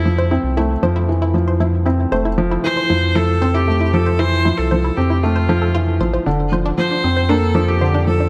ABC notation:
X:1
M:4/4
L:1/16
Q:1/4=116
K:F
V:1 name="Viola"
E2 z12 z2 | z4 c4 A3 G3 A2 | c3 A3 G2 F6 z2 | z4 c4 A3 G3 A2 |]
V:2 name="Synth arpeggio sound"
z c E z E z c E z E z c E z E z | c E z E z c E z E z c E z E z c | E z E z c E z E z c A A F z c c | D z c D z D z c D z D z c D z D |]
V:3 name="Felt piano" clef=bass
F,2 C2 A,2 F,2 E,2 F,2 F,2 C2 | A,2 F,2 E,2 F,2 F,2 C2 A,2 F,2 | E,2 F,2 F,2 C2 A,2 F,2 E,2 F,2 | D,2 F,2 F,2 C2 B,2 F,2 D,2 F,2 |]
V:4 name="Sub bass" clef=bass
F,,3 C,,3 F,,8- F,,2 | F,,,4 z2 F,,8- F,,2- | F,,3 C,,3 F,,8 A,,, z | F,,,4 z2 F,,8- F,,2 |]